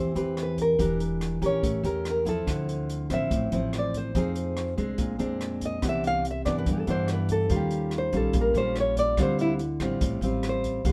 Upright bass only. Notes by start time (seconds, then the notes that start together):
Already playing: E2
0.15 E2
0.79 E1
1.42 A#1
1.63 A1
1.83 E2
2.47 D2
3.10 A1
3.31 A1
3.52 A1
4.15 F2
4.77 C2
4.98 A#1
5.19 F2
5.83 C2
6.46 G2
6.66 G2
6.87 G2
7.50 D#2
8.13 A#1
8.34 A#1
8.54 A#1
9.17 D2
9.80 A1
10.01 A1
10.21 A1
10.85 C#2